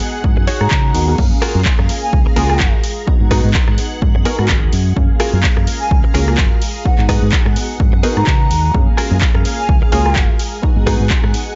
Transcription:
Already playing: B3 D#4 F#4 G#4 F#5 A#5
0.00 muted clean electric guitar stroke, open hi-hat
0.24 G#2, kick
0.37 F#2, muted clean electric guitar stroke
0.47 D#4 F#4 G#4 C#5, open hi-hat
0.61 G#2 A#5, cross-stick
0.71 C#3, kick, clap
0.94 D#2 B3 D#4 F#4 A#4, open hi-hat
1.08 B3 D#4 F#4 A#4
1.18 F#2 A#3 C#4 G#4 F5 A#5, kick, crash
1.42 F4 F#4 G#4 A#4, cross-stick, open hi-hat
1.55 F#2
1.65 kick, clap
1.79 F#2, muted clean electric guitar stroke, cross-stick
1.89 muted clean electric guitar stroke, open hi-hat
2.02 G#5
2.13 C#2, kick
2.26 muted clean electric guitar stroke
2.36 C#2 A#3 C#4 F4 F#4 G#4 A#4 G#5, open hi-hat
2.49 A#3 C#4 F4 G#4, cross-stick
2.60 F#1, kick, clap
2.84 open hi-hat
3.06 B3 D#4 F#4 F#5 A#5, muted fingered electric bass stroke, kick
3.20 G#2
3.31 D#4 F#4 G#4 B4, kick, cross-stick, open hi-hat
3.44 G#2
3.54 kick, clap
3.68 G#2, muted clean electric guitar stroke, cross-stick
3.78 muted clean electric guitar stroke, open hi-hat
4.02 G#2, kick
4.15 F#2, muted clean electric guitar stroke
4.25 B3 D#4 F#4 G#4 A#4, open hi-hat
4.38 G#2 B3 D#4 F#4 A#4, cross-stick
4.49 G#1, kick, clap
4.63 D#2
4.73 F#2, open hi-hat
4.96 F#2 A#3 C#4 G#4 F5 A#5, kick
5.20 F4 F#4 G#4 A#4, cross-stick, open hi-hat
5.33 F#2
5.43 kick, clap
5.57 F#2, muted clean electric guitar stroke, cross-stick
5.67 muted clean electric guitar stroke, open hi-hat
5.80 G#5
5.91 C#2, kick
6.04 muted clean electric guitar stroke
6.14 C#2 A#3 C#4 F4 F#4 G#4 A#4, open hi-hat
6.28 A#3 C#4 F4 G#4, cross-stick
6.38 F#1, kick, clap
6.62 open hi-hat
6.85 B3 D#4 F#4 F#5 A#5, muted fingered electric bass stroke, kick
6.98 G#2, clap
7.09 D#4 F#4 G#4 B4, kick, cross-stick, open hi-hat
7.22 G#2
7.32 kick, clap
7.46 G#2, muted clean electric guitar stroke, cross-stick
7.56 muted clean electric guitar stroke, open hi-hat
7.80 G#2, kick
7.93 F#2, muted clean electric guitar stroke
8.03 B3 D#4 F#4 G#4 A#4 B4, open hi-hat
8.17 G#2 B3 D#4 F#4 A#4 A#5, cross-stick
8.27 C#3, kick, clap
8.51 D#2, open hi-hat
8.74 F#2 A#3 C#4 G#4 F5 A#5, kick
8.97 F4 F#4 G#4 A#4, cross-stick, open hi-hat
9.11 F#2
9.21 kick, clap
9.35 F#2, muted clean electric guitar stroke, cross-stick
9.45 muted clean electric guitar stroke, open hi-hat
9.58 G#5
9.69 C#2, kick
9.82 muted clean electric guitar stroke
9.92 C#2 A#3 C#4 F4 F#4 G#4 A#4 G#5, open hi-hat
10.05 A#3 C#4 F4 G#4, cross-stick
10.16 F#1, kick, clap
10.39 open hi-hat
10.62 B3 D#4 F#4 F#5 A#5, muted fingered electric bass stroke, kick
10.76 G#2
10.87 D#4 F#4 G#4 B4, kick, cross-stick, open hi-hat
11.00 G#2
11.10 kick, clap
11.23 G#2, muted clean electric guitar stroke, cross-stick
11.34 muted clean electric guitar stroke, open hi-hat

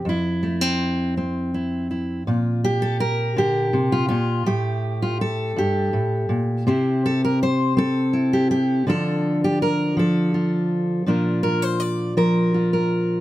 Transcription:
0.05 F2 E4
0.43 A3
0.61 C4
1.17 C4
1.54 E4
1.91 E4
2.27 A#2 F4
2.64 G4
2.82 A4
3.00 A#4
3.36 D3 G4
3.73 C3
3.92 F4
4.09 A#2 F4
4.46 A2 A3 G4
5.02 F4
5.21 A4
5.56 G2 G4
5.93 A2
6.29 A#2
6.67 C3 C4 E4 G4 C5
7.06 A4
7.25 A#4
7.43 C5
7.77 C4 A4
8.13 E4
8.33 G4
8.51 G4
8.87 D3 F3 D4 F4 A4
9.44 G4
9.62 A#4
9.97 F3 A4
10.34 F4
11.06 A#2 F3 D4 F4 A#4
11.43 A#4
11.62 C5
11.80 D5
12.17 F3 A#4
12.54 F4
12.73 A#4

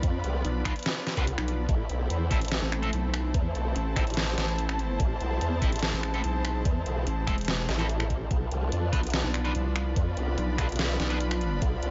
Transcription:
Already playing: F3 B3 D4 F4 D5 B5
0.03 F2, kick, closed hi-hat
0.24 C2, closed hi-hat
0.45 B1, closed hi-hat
0.65 B1 D4 F4 B4, finger snap, kick, open hi-hat
0.76 closed hi-hat
0.79 closed hi-hat
0.83 snare, closed hi-hat
0.86 closed hi-hat
1.07 snare, closed hi-hat
1.17 C2 D4 F4 B4, kick, closed hi-hat
1.27 closed hi-hat
1.38 B1, finger snap
1.48 closed hi-hat
1.69 A1 E3 A3 C4 E4, kick, closed hi-hat
1.89 B1, closed hi-hat
1.94 C5
2.10 E2, closed hi-hat
2.31 A1 C4 E4 A4, kick, open hi-hat
2.41 A5, closed hi-hat
2.45 closed hi-hat
2.48 snare, closed hi-hat
2.52 closed hi-hat
2.62 A1
2.72 finger snap, closed hi-hat
2.83 C4 E4 A4, closed hi-hat
2.93 B1, closed hi-hat
3.14 finger snap, closed hi-hat
3.34 E2, kick, closed hi-hat
3.55 B1, closed hi-hat
3.76 A1, closed hi-hat
3.96 A1 C4 E4 A4, finger snap, kick, open hi-hat
4.07 closed hi-hat
4.10 closed hi-hat
4.14 snare, closed hi-hat
4.17 closed hi-hat
4.38 A1, snare, closed hi-hat
4.48 closed hi-hat
4.58 closed hi-hat
4.69 finger snap
4.79 G#1, closed hi-hat
5.00 A1 G#3, kick, closed hi-hat
5.21 B1, closed hi-hat
5.41 E2, closed hi-hat
5.62 A1 C4 E4 A4, kick, open hi-hat
5.72 closed hi-hat
5.76 closed hi-hat
5.79 snare, closed hi-hat
5.93 A1
6.03 finger snap, closed hi-hat
6.14 C4 E4 A4, closed hi-hat
6.24 B1, closed hi-hat
6.45 finger snap, closed hi-hat
6.65 E2, kick, closed hi-hat
6.86 B1, closed hi-hat
7.07 A1, closed hi-hat
7.27 E1 C4 E4 A4, finger snap, kick, open hi-hat
7.38 closed hi-hat
7.41 closed hi-hat
7.45 snare, closed hi-hat
7.48 closed hi-hat
7.69 A1, snare, closed hi-hat
7.79 C4 E4 A4, closed hi-hat
7.89 closed hi-hat
8.00 finger snap
8.10 kick, closed hi-hat
8.31 B1 F3 B3 D4 F4, kick, closed hi-hat
8.47 D5
8.52 C2, closed hi-hat
8.72 F2, closed hi-hat
8.93 B1 D4 F4 B4, kick, open hi-hat
9.03 closed hi-hat
9.07 closed hi-hat
9.10 snare, closed hi-hat
9.14 closed hi-hat
9.19 B5
9.24 B1
9.34 finger snap, closed hi-hat
9.45 D4 F4 B4, closed hi-hat
9.55 C2, closed hi-hat
9.76 finger snap, closed hi-hat
9.96 F2, kick, closed hi-hat
10.17 C2, closed hi-hat
10.38 B1, closed hi-hat
10.58 B1 D4 F4 B4, finger snap, kick, open hi-hat
10.69 closed hi-hat
10.72 closed hi-hat
10.76 snare, closed hi-hat
10.79 closed hi-hat
11.00 B1, snare, closed hi-hat
11.10 D4 F4 B4, closed hi-hat
11.20 closed hi-hat
11.31 finger snap
11.41 closed hi-hat
11.62 B1, kick, closed hi-hat
11.83 C2, closed hi-hat

